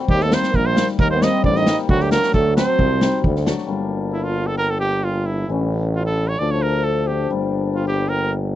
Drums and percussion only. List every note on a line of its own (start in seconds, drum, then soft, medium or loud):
0.08 kick medium
0.20 snare soft
0.32 snare medium
0.43 snare medium
0.54 kick medium
0.77 snare medium
0.88 snare soft
0.99 kick medium
1.22 snare medium
1.44 kick medium
1.55 snare soft
1.66 snare medium
1.78 snare soft
1.89 kick medium
2.00 snare soft
2.11 snare medium
2.23 snare medium
2.34 kick medium
2.57 snare medium
2.79 kick medium
3.01 snare medium
3.24 kick medium
3.36 snare soft
3.47 snare medium
3.58 snare soft